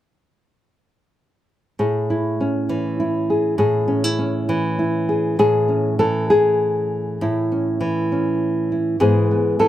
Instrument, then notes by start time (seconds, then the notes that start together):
nylon-string guitar
1.79 A2 G#4
2.10 E4
2.41 C#4
2.69 E3
3.00 E4
3.30 G#4
3.58 A2 G#4
3.88 C#4
4.04 E4
4.19 C#4
4.49 E3
4.79 E4
5.09 G#4
5.39 A2 G#4
5.68 C#4
5.99 E3 A4
6.30 G#4
7.21 A2 E4
7.52 C#4
7.81 E3
8.12 C#4
8.72 E4
9.00 G#2 E3 B3 E4 G#4
9.31 B3
9.59 E3 A4